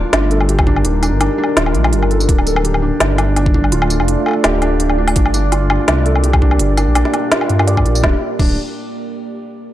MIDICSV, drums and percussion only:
0, 0, Header, 1, 2, 480
1, 0, Start_track
1, 0, Tempo, 359281
1, 1133, Time_signature, 4, 2, 24, 8
1, 13005, End_track
2, 0, Start_track
2, 0, Title_t, "Drums"
2, 173, Note_on_c, 9, 38, 121
2, 173, Note_on_c, 9, 42, 82
2, 173, Note_on_c, 9, 77, 51
2, 306, Note_off_c, 9, 38, 0
2, 306, Note_off_c, 9, 42, 0
2, 306, Note_off_c, 9, 77, 0
2, 413, Note_on_c, 9, 42, 36
2, 542, Note_on_c, 9, 77, 51
2, 546, Note_off_c, 9, 42, 0
2, 653, Note_on_c, 9, 42, 64
2, 675, Note_off_c, 9, 77, 0
2, 783, Note_on_c, 9, 36, 112
2, 784, Note_on_c, 9, 77, 76
2, 786, Note_off_c, 9, 42, 0
2, 893, Note_off_c, 9, 36, 0
2, 893, Note_on_c, 9, 36, 62
2, 917, Note_off_c, 9, 77, 0
2, 1022, Note_on_c, 9, 77, 50
2, 1026, Note_off_c, 9, 36, 0
2, 1131, Note_on_c, 9, 42, 74
2, 1155, Note_off_c, 9, 77, 0
2, 1264, Note_off_c, 9, 42, 0
2, 1372, Note_on_c, 9, 42, 35
2, 1372, Note_on_c, 9, 54, 60
2, 1372, Note_on_c, 9, 77, 46
2, 1505, Note_off_c, 9, 42, 0
2, 1505, Note_off_c, 9, 54, 0
2, 1505, Note_off_c, 9, 77, 0
2, 1612, Note_on_c, 9, 42, 63
2, 1612, Note_on_c, 9, 77, 72
2, 1745, Note_off_c, 9, 42, 0
2, 1745, Note_off_c, 9, 77, 0
2, 1918, Note_on_c, 9, 77, 46
2, 2052, Note_off_c, 9, 77, 0
2, 2094, Note_on_c, 9, 38, 115
2, 2094, Note_on_c, 9, 42, 78
2, 2223, Note_on_c, 9, 77, 50
2, 2227, Note_off_c, 9, 38, 0
2, 2227, Note_off_c, 9, 42, 0
2, 2332, Note_on_c, 9, 42, 36
2, 2356, Note_off_c, 9, 77, 0
2, 2463, Note_on_c, 9, 38, 37
2, 2463, Note_on_c, 9, 77, 76
2, 2465, Note_off_c, 9, 42, 0
2, 2574, Note_on_c, 9, 42, 60
2, 2597, Note_off_c, 9, 38, 0
2, 2597, Note_off_c, 9, 77, 0
2, 2706, Note_on_c, 9, 77, 48
2, 2707, Note_off_c, 9, 42, 0
2, 2817, Note_on_c, 9, 42, 34
2, 2840, Note_off_c, 9, 77, 0
2, 2944, Note_on_c, 9, 54, 63
2, 2950, Note_off_c, 9, 42, 0
2, 3056, Note_on_c, 9, 36, 120
2, 3057, Note_on_c, 9, 42, 77
2, 3078, Note_off_c, 9, 54, 0
2, 3186, Note_on_c, 9, 77, 51
2, 3190, Note_off_c, 9, 36, 0
2, 3191, Note_off_c, 9, 42, 0
2, 3296, Note_on_c, 9, 42, 33
2, 3296, Note_on_c, 9, 54, 65
2, 3320, Note_off_c, 9, 77, 0
2, 3425, Note_on_c, 9, 77, 71
2, 3429, Note_off_c, 9, 42, 0
2, 3429, Note_off_c, 9, 54, 0
2, 3536, Note_on_c, 9, 42, 60
2, 3559, Note_off_c, 9, 77, 0
2, 3665, Note_on_c, 9, 77, 49
2, 3670, Note_off_c, 9, 42, 0
2, 3799, Note_off_c, 9, 77, 0
2, 4013, Note_on_c, 9, 38, 113
2, 4013, Note_on_c, 9, 42, 76
2, 4013, Note_on_c, 9, 77, 50
2, 4147, Note_off_c, 9, 38, 0
2, 4147, Note_off_c, 9, 42, 0
2, 4147, Note_off_c, 9, 77, 0
2, 4253, Note_on_c, 9, 42, 33
2, 4253, Note_on_c, 9, 77, 71
2, 4387, Note_off_c, 9, 42, 0
2, 4387, Note_off_c, 9, 77, 0
2, 4495, Note_on_c, 9, 42, 60
2, 4495, Note_on_c, 9, 77, 48
2, 4626, Note_on_c, 9, 36, 105
2, 4628, Note_off_c, 9, 42, 0
2, 4628, Note_off_c, 9, 77, 0
2, 4735, Note_off_c, 9, 36, 0
2, 4735, Note_on_c, 9, 36, 56
2, 4863, Note_on_c, 9, 77, 48
2, 4869, Note_off_c, 9, 36, 0
2, 4971, Note_on_c, 9, 42, 77
2, 4997, Note_off_c, 9, 77, 0
2, 5102, Note_on_c, 9, 77, 75
2, 5105, Note_off_c, 9, 42, 0
2, 5214, Note_on_c, 9, 42, 35
2, 5214, Note_on_c, 9, 54, 64
2, 5235, Note_off_c, 9, 77, 0
2, 5343, Note_on_c, 9, 77, 50
2, 5347, Note_off_c, 9, 42, 0
2, 5347, Note_off_c, 9, 54, 0
2, 5453, Note_on_c, 9, 42, 60
2, 5476, Note_off_c, 9, 77, 0
2, 5587, Note_off_c, 9, 42, 0
2, 5693, Note_on_c, 9, 77, 47
2, 5724, Note_off_c, 9, 77, 0
2, 5724, Note_on_c, 9, 77, 40
2, 5758, Note_off_c, 9, 77, 0
2, 5758, Note_on_c, 9, 77, 33
2, 5790, Note_off_c, 9, 77, 0
2, 5790, Note_on_c, 9, 77, 27
2, 5924, Note_off_c, 9, 77, 0
2, 5931, Note_on_c, 9, 38, 112
2, 5931, Note_on_c, 9, 42, 74
2, 5931, Note_on_c, 9, 77, 81
2, 6065, Note_off_c, 9, 38, 0
2, 6065, Note_off_c, 9, 42, 0
2, 6065, Note_off_c, 9, 77, 0
2, 6170, Note_on_c, 9, 42, 35
2, 6170, Note_on_c, 9, 77, 50
2, 6304, Note_off_c, 9, 42, 0
2, 6304, Note_off_c, 9, 77, 0
2, 6410, Note_on_c, 9, 42, 61
2, 6540, Note_on_c, 9, 77, 50
2, 6544, Note_off_c, 9, 42, 0
2, 6674, Note_off_c, 9, 77, 0
2, 6780, Note_on_c, 9, 54, 63
2, 6780, Note_on_c, 9, 77, 78
2, 6891, Note_on_c, 9, 42, 74
2, 6897, Note_on_c, 9, 36, 114
2, 6914, Note_off_c, 9, 54, 0
2, 6914, Note_off_c, 9, 77, 0
2, 7022, Note_on_c, 9, 77, 55
2, 7025, Note_off_c, 9, 42, 0
2, 7030, Note_off_c, 9, 36, 0
2, 7133, Note_on_c, 9, 42, 34
2, 7133, Note_on_c, 9, 54, 67
2, 7155, Note_off_c, 9, 77, 0
2, 7267, Note_off_c, 9, 42, 0
2, 7267, Note_off_c, 9, 54, 0
2, 7375, Note_on_c, 9, 42, 63
2, 7375, Note_on_c, 9, 77, 53
2, 7509, Note_off_c, 9, 42, 0
2, 7509, Note_off_c, 9, 77, 0
2, 7615, Note_on_c, 9, 77, 82
2, 7748, Note_off_c, 9, 77, 0
2, 7855, Note_on_c, 9, 38, 107
2, 7855, Note_on_c, 9, 42, 78
2, 7855, Note_on_c, 9, 77, 54
2, 7988, Note_off_c, 9, 38, 0
2, 7988, Note_off_c, 9, 42, 0
2, 7988, Note_off_c, 9, 77, 0
2, 8092, Note_on_c, 9, 42, 36
2, 8223, Note_on_c, 9, 77, 51
2, 8226, Note_off_c, 9, 42, 0
2, 8332, Note_on_c, 9, 42, 62
2, 8357, Note_off_c, 9, 77, 0
2, 8462, Note_on_c, 9, 77, 80
2, 8466, Note_off_c, 9, 42, 0
2, 8467, Note_on_c, 9, 36, 98
2, 8576, Note_off_c, 9, 36, 0
2, 8576, Note_on_c, 9, 36, 54
2, 8596, Note_off_c, 9, 77, 0
2, 8700, Note_on_c, 9, 77, 53
2, 8710, Note_off_c, 9, 36, 0
2, 8810, Note_on_c, 9, 42, 81
2, 8834, Note_off_c, 9, 77, 0
2, 8944, Note_off_c, 9, 42, 0
2, 9050, Note_on_c, 9, 42, 35
2, 9050, Note_on_c, 9, 54, 68
2, 9050, Note_on_c, 9, 77, 51
2, 9184, Note_off_c, 9, 42, 0
2, 9184, Note_off_c, 9, 54, 0
2, 9184, Note_off_c, 9, 77, 0
2, 9290, Note_on_c, 9, 42, 67
2, 9290, Note_on_c, 9, 77, 82
2, 9422, Note_on_c, 9, 38, 34
2, 9424, Note_off_c, 9, 42, 0
2, 9424, Note_off_c, 9, 77, 0
2, 9533, Note_on_c, 9, 42, 37
2, 9533, Note_on_c, 9, 77, 55
2, 9556, Note_off_c, 9, 38, 0
2, 9667, Note_off_c, 9, 42, 0
2, 9667, Note_off_c, 9, 77, 0
2, 9774, Note_on_c, 9, 38, 117
2, 9774, Note_on_c, 9, 42, 79
2, 9902, Note_on_c, 9, 77, 54
2, 9907, Note_off_c, 9, 38, 0
2, 9907, Note_off_c, 9, 42, 0
2, 10013, Note_on_c, 9, 42, 36
2, 10036, Note_off_c, 9, 77, 0
2, 10146, Note_on_c, 9, 38, 35
2, 10146, Note_on_c, 9, 77, 80
2, 10147, Note_off_c, 9, 42, 0
2, 10254, Note_on_c, 9, 42, 62
2, 10279, Note_off_c, 9, 38, 0
2, 10279, Note_off_c, 9, 77, 0
2, 10385, Note_on_c, 9, 36, 59
2, 10386, Note_on_c, 9, 77, 54
2, 10388, Note_off_c, 9, 42, 0
2, 10496, Note_on_c, 9, 42, 37
2, 10519, Note_off_c, 9, 36, 0
2, 10520, Note_off_c, 9, 77, 0
2, 10625, Note_on_c, 9, 54, 67
2, 10629, Note_off_c, 9, 42, 0
2, 10735, Note_on_c, 9, 36, 114
2, 10737, Note_on_c, 9, 38, 87
2, 10759, Note_off_c, 9, 54, 0
2, 10869, Note_off_c, 9, 36, 0
2, 10870, Note_off_c, 9, 38, 0
2, 11215, Note_on_c, 9, 36, 109
2, 11217, Note_on_c, 9, 49, 87
2, 11349, Note_off_c, 9, 36, 0
2, 11350, Note_off_c, 9, 49, 0
2, 13005, End_track
0, 0, End_of_file